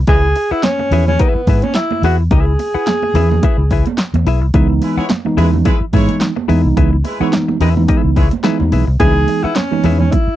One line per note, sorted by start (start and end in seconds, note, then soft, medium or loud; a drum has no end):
0.07 0.32 C#2 loud
0.07 0.27 E4 medium
0.07 0.24 G#4 medium
0.07 0.53 G#4 loud
0.07 0.23 B4 loud
0.07 0.23 E5 medium
0.07 kick loud
0.07 closed hi-hat medium
0.24 muted clean electric guitar stroke medium
0.36 muted clean electric guitar stroke soft
0.36 open hi-hat medium
0.51 0.65 E4 loud
0.51 0.64 E4 medium
0.51 0.64 G#4 medium
0.51 0.63 B4 medium
0.51 0.63 F#5 medium
0.51 muted fingered electric bass stroke soft
0.63 1.07 C#4 loud
0.63 snare loud
0.63 clap medium
0.63 closed hi-hat medium
0.63 muted conga soft
0.63 high conga medium
0.79 muted clean electric guitar stroke soft
0.79 high conga medium
0.91 1.16 E2 medium
0.91 1.11 E4 medium
0.91 1.07 G#4 medium
0.91 1.07 B4 loud
0.91 1.06 E5 loud
0.91 open hi-hat medium
0.91 low conga medium
1.07 1.22 C#4 loud
1.07 muted clean electric guitar stroke medium
1.07 high conga medium
1.07 low conga medium
1.19 1.64 B3 medium
1.19 1.40 E4 loud
1.19 1.36 G#4 medium
1.19 1.35 B4 loud
1.19 1.35 E5 loud
1.19 kick loud
1.19 closed hi-hat loud
1.19 muted conga soft
1.35 muted fingered electric bass stroke medium
1.35 muted clean electric guitar stroke medium
1.47 1.61 G#2 medium
1.47 1.63 E4 medium
1.47 1.64 G#4 medium
1.47 1.64 B4 medium
1.47 1.63 E5 medium
1.47 kick medium
1.47 open hi-hat medium
1.47 muted conga soft
1.62 1.74 C#4 medium
1.62 muted clean electric guitar stroke soft
1.62 closed hi-hat medium
1.62 high conga loud
1.74 2.01 E4 loud
1.74 snare loud
1.74 clap loud
1.74 closed hi-hat medium
1.74 muted conga soft
1.91 muted clean electric guitar stroke medium
1.91 high conga medium
2.02 2.27 E2 loud
2.02 2.22 E4 medium
2.02 2.16 F#4 medium
2.02 2.19 G#4 medium
2.02 2.19 B4 medium
2.02 2.19 E5 medium
2.02 open hi-hat medium
2.02 muted conga soft
2.20 muted clean electric guitar stroke medium
2.31 2.55 C#2 loud
2.31 2.52 E4 loud
2.31 3.95 G#4 loud
2.31 2.47 G#4 medium
2.31 2.47 B4 loud
2.31 2.46 E5 loud
2.31 kick loud
2.31 closed hi-hat medium
2.31 muted conga soft
2.48 muted clean electric guitar stroke soft
2.59 muted clean electric guitar stroke soft
2.59 open hi-hat medium
2.59 muted conga soft
2.74 2.87 E4 medium
2.74 2.87 G#4 medium
2.74 2.87 B4 medium
2.74 2.86 F#5 medium
2.74 muted fingered electric bass stroke soft
2.87 snare loud
2.87 clap medium
2.87 closed hi-hat medium
2.87 high conga medium
3.02 muted clean electric guitar stroke medium
3.02 high conga medium
3.14 3.39 E2 medium
3.14 3.34 E4 medium
3.14 3.31 G#4 loud
3.14 3.31 B4 medium
3.14 3.30 E5 loud
3.14 open hi-hat medium
3.14 muted conga soft
3.14 low conga medium
3.31 muted clean electric guitar stroke soft
3.31 high conga medium
3.31 low conga medium
3.43 3.62 E4 medium
3.43 3.58 G#4 medium
3.43 3.58 B4 medium
3.43 3.58 E5 loud
3.43 muted fingered electric bass stroke soft
3.43 kick loud
3.43 closed hi-hat loud
3.43 muted conga soft
3.58 3.82 C#2 medium
3.58 muted clean electric guitar stroke soft
3.71 3.86 E4 medium
3.71 3.86 G#4 medium
3.71 3.86 B4 medium
3.71 3.86 E5 medium
3.71 kick medium
3.71 open hi-hat medium
3.86 muted clean electric guitar stroke soft
3.86 closed hi-hat medium
3.86 high conga medium
3.98 snare loud
3.98 clap medium
3.98 closed hi-hat medium
3.98 muted conga soft
4.14 4.24 E2 medium
4.14 muted clean electric guitar stroke soft
4.14 closed hi-hat medium
4.14 high conga medium
4.25 4.41 B1 medium
4.25 4.45 E4 medium
4.25 4.42 G#4 medium
4.25 4.42 B4 medium
4.25 4.41 E5 loud
4.25 open hi-hat medium
4.25 muted conga soft
4.41 4.52 C2 medium
4.41 muted clean electric guitar stroke soft
4.54 4.78 C#2 loud
4.54 5.00 E3 medium
4.54 5.00 G#3 medium
4.54 5.01 B3 loud
4.54 5.01 D#4 loud
4.54 4.73 E4 medium
4.54 4.69 G#4 medium
4.54 4.69 B4 medium
4.54 4.69 E5 medium
4.54 kick loud
4.54 closed hi-hat medium
4.70 muted clean electric guitar stroke medium
4.82 4.95 G#3 medium
4.82 4.95 E4 medium
4.82 4.95 B4 medium
4.82 muted clean electric guitar stroke soft
4.82 open hi-hat medium
4.82 muted conga soft
4.97 5.05 G#3 medium
4.97 5.05 E4 medium
4.97 5.10 E4 medium
4.97 5.10 G#4 medium
4.97 5.10 B4 medium
4.97 5.05 C#5 medium
4.97 5.10 F#5 medium
4.97 muted fingered electric bass stroke soft
5.10 snare loud
5.10 clap medium
5.10 closed hi-hat medium
5.10 muted conga soft
5.10 high conga medium
5.25 5.69 E3 medium
5.25 5.69 G#3 medium
5.25 5.69 B3 medium
5.25 5.70 D#4 loud
5.25 muted clean electric guitar stroke medium
5.25 high conga medium
5.37 5.62 E2 medium
5.37 5.47 G#3 medium
5.37 5.56 E4 loud
5.37 5.47 E4 medium
5.37 5.53 G#4 loud
5.37 5.47 B4 medium
5.37 5.52 B4 loud
5.37 5.52 E5 loud
5.37 open hi-hat medium
5.37 low conga medium
5.53 muted clean electric guitar stroke soft
5.53 high conga medium
5.53 low conga medium
5.65 5.75 G#3 medium
5.65 5.84 E4 medium
5.65 5.75 E4 medium
5.65 5.81 G#4 medium
5.65 5.81 B4 loud
5.65 5.75 B4 loud
5.65 5.80 E5 loud
5.65 kick medium
5.65 closed hi-hat medium
5.65 muted conga soft
5.81 muted fingered electric bass stroke medium
5.81 muted clean electric guitar stroke soft
5.93 6.07 G#2 medium
5.93 6.30 E3 medium
5.93 6.30 G#3 medium
5.93 6.16 G#3 medium
5.93 6.30 B3 medium
5.93 6.31 D#4 loud
5.93 6.09 E4 medium
5.93 6.16 E4 medium
5.93 6.08 G#4 medium
5.93 6.08 B4 medium
5.93 6.16 C#5 loud
5.93 6.08 E5 medium
5.93 kick medium
5.93 open hi-hat medium
5.93 muted conga soft
6.09 muted clean electric guitar stroke soft
6.09 closed hi-hat medium
6.09 high conga medium
6.21 snare loud
6.21 clap medium
6.21 closed hi-hat medium
6.21 muted conga soft
6.36 muted clean electric guitar stroke medium
6.36 high conga medium
6.48 6.63 E2 medium
6.48 6.95 E3 loud
6.48 6.95 G#3 medium
6.48 6.96 B3 medium
6.48 6.96 D#4 loud
6.48 6.67 E4 medium
6.48 6.63 G#4 loud
6.48 6.63 B4 loud
6.48 6.63 E5 loud
6.48 open hi-hat medium
6.64 6.76 C2 medium
6.64 muted clean electric guitar stroke soft
6.77 7.01 C#2 loud
6.77 6.96 E4 medium
6.77 6.92 G#4 medium
6.77 6.92 B4 medium
6.77 6.92 E5 medium
6.77 kick loud
6.77 closed hi-hat medium
6.77 muted conga soft
6.93 muted clean electric guitar stroke soft
7.04 7.17 G#3 medium
7.04 7.17 E4 medium
7.04 7.17 B4 medium
7.04 muted clean electric guitar stroke soft
7.04 open hi-hat medium
7.04 muted conga soft
7.20 7.55 E3 medium
7.20 7.56 G#3 medium
7.20 7.28 G#3 medium
7.20 7.56 B3 loud
7.20 7.56 D#4 loud
7.20 7.28 E4 medium
7.20 7.33 E4 medium
7.20 7.33 G#4 medium
7.20 7.33 B4 medium
7.20 7.28 C#5 medium
7.20 7.33 F#5 medium
7.20 muted fingered electric bass stroke medium
7.33 snare loud
7.33 clap medium
7.33 closed hi-hat medium
7.33 muted conga soft
7.33 high conga medium
7.48 muted clean electric guitar stroke soft
7.48 high conga medium
7.60 7.85 E2 medium
7.60 7.70 G#3 medium
7.60 7.69 E4 medium
7.60 7.82 E4 medium
7.60 7.76 G#4 loud
7.60 7.70 B4 medium
7.60 7.76 B4 loud
7.60 7.76 E5 loud
7.60 open hi-hat medium
7.60 low conga loud
7.76 8.20 E3 medium
7.76 8.20 G#3 medium
7.76 8.20 B3 medium
7.76 8.20 D#4 medium
7.76 muted clean electric guitar stroke medium
7.76 high conga medium
7.76 low conga medium
7.88 8.09 E4 medium
7.88 8.04 G#4 loud
7.88 8.03 B4 medium
7.88 8.03 E5 loud
7.88 muted fingered electric bass stroke medium
7.88 kick loud
7.88 closed hi-hat medium
8.04 8.29 C#2 loud
8.04 muted clean electric guitar stroke soft
8.16 8.26 G#3 medium
8.16 8.32 E4 medium
8.16 8.26 E4 medium
8.16 8.31 G#4 medium
8.16 8.30 B4 medium
8.16 8.26 C#5 medium
8.16 8.30 E5 medium
8.16 kick medium
8.16 open hi-hat medium
8.31 muted clean electric guitar stroke soft
8.31 closed hi-hat medium
8.31 high conga medium
8.43 8.81 E3 medium
8.43 8.81 G#3 medium
8.43 8.82 B3 medium
8.43 8.82 D#4 loud
8.43 8.63 E4 medium
8.43 8.60 G#4 loud
8.43 8.59 B4 loud
8.43 8.59 E5 loud
8.43 snare loud
8.43 clap medium
8.43 closed hi-hat medium
8.43 muted conga soft
8.60 8.71 E2 medium
8.60 muted clean electric guitar stroke soft
8.60 high conga loud
8.72 8.86 B1 loud
8.72 8.87 E4 medium
8.72 8.87 G#4 medium
8.72 8.86 B4 medium
8.72 8.86 E5 medium
8.72 open hi-hat medium
8.72 muted conga soft
8.87 8.99 C2 medium
8.87 muted clean electric guitar stroke medium
9.00 9.24 C#2 loud
9.00 9.46 E3 medium
9.00 9.47 G#3 medium
9.00 9.47 B3 medium
9.00 9.08 D4 medium
9.00 9.19 E4 loud
9.00 9.44 G#4 loud
9.00 9.15 G#4 medium
9.00 9.15 B4 loud
9.00 9.15 E5 loud
9.00 kick loud
9.00 closed hi-hat medium
9.00 muted conga soft
9.07 9.50 D#4 loud
9.16 muted clean electric guitar stroke medium
9.28 muted clean electric guitar stroke soft
9.28 open hi-hat medium
9.28 muted conga soft
9.43 9.57 E4 loud
9.43 9.56 E4 medium
9.43 9.56 G#4 medium
9.43 9.56 B4 medium
9.43 9.56 F#5 medium
9.43 muted fingered electric bass stroke medium
9.56 9.99 C#4 loud
9.56 snare loud
9.56 clap medium
9.56 closed hi-hat medium
9.56 high conga medium
9.71 10.15 E3 medium
9.71 10.15 G#3 medium
9.71 10.16 B3 medium
9.71 10.16 D#4 medium
9.71 muted clean electric guitar stroke soft
9.71 high conga medium
9.83 10.08 E2 medium
9.83 10.03 E4 loud
9.83 10.00 G#4 medium
9.83 10.00 B4 medium
9.83 9.99 E5 loud
9.83 open hi-hat medium
9.83 low conga loud
9.99 10.13 C#4 loud
9.99 muted clean electric guitar stroke medium
9.99 high conga medium
9.99 low conga medium
10.11 10.36 E4 medium
10.11 muted clean electric guitar stroke soft
10.11 kick loud
10.11 closed hi-hat medium
10.11 muted conga soft
10.28 muted fingered electric bass stroke medium